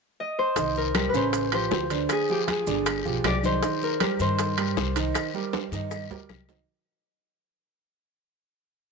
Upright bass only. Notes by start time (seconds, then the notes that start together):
0.56 C2
1.13 A1
1.71 D2
2.67 G1
3.05 B1
3.24 C2
4.19 G2
4.76 C2
5.71 G2
6.10 D2
6.29 C2